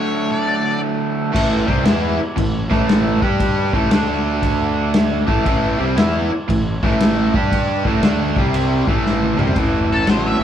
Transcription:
Already playing: overdriven electric guitar D3 F#3 A3 D4, lead electric guitar C#5
0.32 lead electric guitar D5
1.33 fingered electric bass A1, overdriven electric guitar A2 E3 A3, kick, crash
1.67 fingered electric bass C2, overdriven electric guitar C3 G3 C4, kick
1.84 fingered electric bass E2, overdriven electric guitar E3 B3 E4, snare, crash
2.19 muted fingered electric bass stroke, muted overdriven electric guitar stroke
2.36 fingered electric bass A1, overdriven electric guitar A2 E3, kick, crash
2.70 fingered electric bass A1, overdriven electric guitar A2 E3 A3, kick, snare
2.89 snare, crash
3.22 fingered electric bass G2, overdriven electric guitar G3 D4 G4, kick
3.40 kick, crash
3.73 fingered electric bass A1, overdriven electric guitar A2 E3 A3, kick
3.91 fingered electric bass D2, overdriven electric guitar D3 A3 D4, snare, crash
4.43 kick, crash
4.94 snare, crash
5.27 fingered electric bass A1, overdriven electric guitar A2 E3 A3, kick
5.45 fingered electric bass A1, overdriven electric guitar A2 E3 A3, kick, crash
5.78 fingered electric bass C2, overdriven electric guitar C3 G3 C4
5.96 fingered electric bass E2, overdriven electric guitar E3 B3 E4, snare, crash
6.31 muted fingered electric bass stroke, muted overdriven electric guitar stroke
6.49 fingered electric bass A1, overdriven electric guitar A2 E3, kick, crash
6.83 fingered electric bass A1, overdriven electric guitar A2 E3 A3, kick, snare
7.00 snare, crash
7.34 fingered electric bass G2, overdriven electric guitar G3 D4 G4, kick
7.52 kick, crash
7.85 fingered electric bass A1, overdriven electric guitar A2 E3 A3, kick
8.02 fingered electric bass D2, overdriven electric guitar D3 A3 D4, snare, crash
8.36 fingered electric bass C2, overdriven electric guitar C3 G3 C4, kick
8.54 crash
8.87 fingered electric bass A1, overdriven electric guitar A2 E3 A3, kick
9.06 snare
9.22 high tom
9.38 fingered electric bass C2, overdriven electric guitar C3 G3 C4, mid tom
9.47 floor tom
9.56 fingered electric bass A1, overdriven electric guitar A2 E3, kick, crash
9.89 fingered electric bass A1, lead electric guitar A4
10.06 fingered electric bass A1, overdriven electric guitar A2 F#3, lead electric guitar C5, snare, crash
10.27 lead electric guitar E5
10.39 fingered electric bass A1, overdriven electric guitar A2

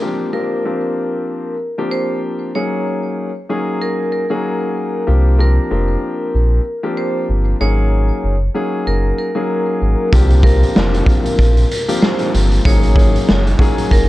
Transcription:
0.02 grand piano F3 A#3 C4 D4 G4
0.33 grand piano F3 A#3 C4 D4 G4, vibraphone A#4
0.65 grand piano F3 A#3 C4 D4 G4
1.78 grand piano F3 A#3 C4 D4 G4
1.91 vibraphone C5
2.55 grand piano F#3 A#3 C#4 D#4 G#4, vibraphone C#5
3.49 grand piano F#3 A#3 C#4 D#4 G#4
3.81 vibraphone A#4
4.12 vibraphone A#4
4.30 grand piano F#3 A#3 C#4 D#4 G#4
5.07 sub bass C2, grand piano F3 A#3 C4 D4 G4
5.38 grand piano F3 A#3 C4 D4 G4, vibraphone A#4
5.71 sub bass F1, grand piano F3 A#3 C4 D4 G4
6.34 sub bass A#1
6.83 grand piano F3 A#3 C4 D4 G4
6.97 vibraphone C5
7.29 sub bass G1
7.60 sub bass G#1, grand piano F#3 A#3 C#4 D#4 G#4, vibraphone C#5
8.24 sub bass F#1
8.55 grand piano F#3 A#3 C#4 D#4 G#4
8.87 sub bass F#1, vibraphone A#4
9.18 vibraphone A#4
9.35 grand piano F#3 A#3 C#4 D#4 G#4
9.82 sub bass G#1
10.12 sub bass C2, grand piano F3 A#3 C4 D4 G4, kick, closed hi-hat
10.30 closed hi-hat
10.43 grand piano F3 A#3 C4 D4 G4, vibraphone A#4, kick, closed hi-hat
10.63 closed hi-hat
10.76 sub bass F1, grand piano F3 A#3 C4 D4 G4, snare
10.94 closed hi-hat
11.06 kick, closed hi-hat
11.26 closed hi-hat
11.39 sub bass A#1, kick, closed hi-hat
11.57 closed hi-hat
11.71 closed hi-hat
11.88 grand piano F3 A#3 C4 D4 G4, closed hi-hat
12.02 vibraphone C5, snare
12.19 closed hi-hat
12.34 sub bass G1, closed hi-hat
12.51 closed hi-hat
12.65 sub bass G#1, grand piano F#3 A#3 C#4 D#4 G#4, vibraphone C#5, kick, closed hi-hat
12.83 closed hi-hat
12.96 kick, closed hi-hat
13.16 closed hi-hat
13.29 sub bass F#1, snare
13.47 closed hi-hat
13.59 grand piano F#3 A#3 C#4 D#4 G#4, kick, closed hi-hat
13.78 closed hi-hat
13.91 sub bass F#1, vibraphone A#4, kick, closed hi-hat

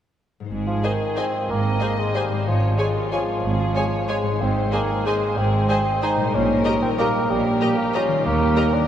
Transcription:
0.40 harp G#2 G#3
0.44 harp D#4 C5
0.51 double bass section G#1, cello section G#2, violin section G#4
0.67 bassoon F3
0.83 bassoon D#3, viola section G#4 C5, violin section D#5 G#5
1.17 bassoon C4, viola section G#4 C5, violin section D#5 G#5
1.49 double bass section G#1, cello section G#2, bassoon A#3, violin section D#5
1.80 viola section G#4 C5, violin section D#5 G#5
1.99 bassoon G#3
2.15 bassoon G3, viola section G#4 C5, violin section C5 D#5 G#5
2.29 harp G#2
2.34 harp G#3
2.38 harp C#4
2.43 harp C#5
2.47 double bass section G#1, cello section G#2, bassoon F3, violin section C#5
2.78 bassoon G#3, violin section F4 C#5 G#5, viola section G#4 C#5
3.12 bassoon F3, viola section G#4 C#5, violin section C#5 G#5
3.43 double bass section G#1, cello section G#2, violin section G#4
3.75 viola section G#4 C#5, violin section C#5 G#5
4.09 bassoon G#3, viola section G#4 C#5, violin section C#5 G#5
4.23 harp G#2
4.27 harp G#3
4.32 harp D#4
4.36 harp C5
4.40 double bass section G#1, cello section G#2, bassoon C4, violin section C5
4.72 bassoon A#3, viola section G#4 C5, violin section G#4 D#5 G#5
5.06 bassoon G#3, viola section G#4 C5, violin section C5 D#5 G#5
5.37 double bass section G#1, cello section G#2, bassoon C4, violin section G#4
5.69 bassoon C4, viola section G#4 C5, violin section C5 D#5 G#5
6.02 bassoon D#4, viola section G#4 C5, violin section D#5 G#5
6.16 harp A#2
6.20 harp G3
6.25 harp D#4
6.30 harp A#4
6.34 double bass section A#1, cello section A#2, bassoon C#4, violin section A#4
6.65 viola section G4 A#4, violin section D#5 A#5
6.82 bassoon C4
6.99 bassoon A#3, viola section G4 A#4, violin section D#5 A#5
7.30 double bass section A#1, cello section A#2, bassoon G3, violin section A#4
7.61 violin section G4 D#5 A#5, viola section G4 A#4
7.78 bassoon A#3
7.94 bassoon C#4, violin section F4 D#5 A#5, viola section G4 A#4
8.08 harp D#3
8.12 harp G3
8.17 harp G4
8.21 double bass section D#2, harp A#4
8.26 cello section D#2, bassoon A#3, violin section G4
8.56 viola section G4 A#4, violin section A#4 D#5 A#5
8.73 bassoon D4

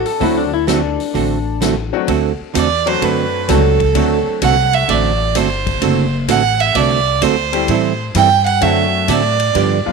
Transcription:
Already playing: fiddle A4, electric slide guitar A4 D5
0.06 pedal steel guitar A4, open hi-hat
0.20 upright bass D2, hollow-body jazz guitar D3 A3 C4 F#4 A4, upright piano F#3 A3 C4 D4 F#4, pedal steel guitar E4, kick, open hi-hat
0.37 pedal steel guitar D4
0.54 pedal steel guitar E4
0.67 hollow-body jazz guitar D3 A3 C4 F#4 A4, pedal steel guitar D4, snare, closed hi-hat
1.00 open hi-hat
1.14 upright bass A1, hollow-body jazz guitar D3 A3 C4 F#4 A4, kick, open hi-hat
1.61 hollow-body jazz guitar D3 A3 C4 F#4 A4, snare, closed hi-hat
1.93 upright piano F#3 A3 C4 D4 F#4
2.07 upright bass D2, hollow-body jazz guitar D3 A3 C4 F#4 A4, kick, ride
2.40 muted upright bass stroke
2.54 upright bass E2, hollow-body jazz guitar D3 A3 C4 F#4 A4, fiddle D5, kick, hi-hat pedal, ride
2.86 upright piano F#3 A3 C4 D4 F#4, fiddle C5, ride
3.01 upright bass F#2, hollow-body jazz guitar D3 A3 C4 F#4 A4, fiddle B4, kick, ride
3.48 upright bass C#2, hollow-body jazz guitar D3 A3 C4 F#4 A4, upright piano F#3 A3 C4 D4 F#4, fiddle A4, kick, snare, hi-hat pedal, ride
3.80 kick, ride
3.95 upright bass D2, hollow-body jazz guitar D3 A3 C4 F#4 A4, upright piano F#3 A3 C4 D4 F#4, kick, ride
4.27 muted upright bass stroke
4.42 upright bass C2, hollow-body jazz guitar D3 A3 C4 F#4 A4, fiddle F#5, kick, hi-hat pedal, ride
4.73 fiddle E5, ride
4.88 upright bass A1, hollow-body jazz guitar D3 A3 C4 F#4 A4, fiddle D5, kick, ride
5.35 upright bass G1, hollow-body jazz guitar D3 A3 C4 F#4 A4, fiddle C5, kick, hi-hat pedal, ride
5.67 kick, ride
5.82 upright bass F#1, hollow-body jazz guitar D3 A3 C4 F#4 A4, kick, ride
6.28 upright bass A1, hollow-body jazz guitar D3 A3 C4 F#4 A4, fiddle F#5, kick, hi-hat pedal, ride
6.60 fiddle E5, ride
6.75 upright bass C2, hollow-body jazz guitar D3 A3 C4 F#4 A4, fiddle D5, kick, ride
7.21 upright bass D2, hollow-body jazz guitar D3 A3 C4 F#4 A4, fiddle C5, kick, hi-hat pedal, ride
7.53 upright piano G3 A3 C4 E4 G4, ride
7.68 upright bass A2, hollow-body jazz guitar E3 G3 C4 E4 A4, kick, ride
8.15 upright bass G2, hollow-body jazz guitar E3 G3 C4 E4 A4, fiddle G5, kick, hi-hat pedal, ride
8.46 fiddle F#5, ride
8.61 upright bass F#2, hollow-body jazz guitar D3 A3 C4 F#4 A4, upright piano F#3 A3 C4 D4 F#4, fiddle E5, kick, ride
9.08 upright bass A2, hollow-body jazz guitar D3 A3 C4 F#4 A4, fiddle D5, kick, hi-hat pedal, ride
9.40 ride
9.55 upright bass G2, hollow-body jazz guitar D3 F3 B3 D4 G4, kick, ride
9.86 upright piano F3 G3 B3 D4 F4, muted upright bass stroke

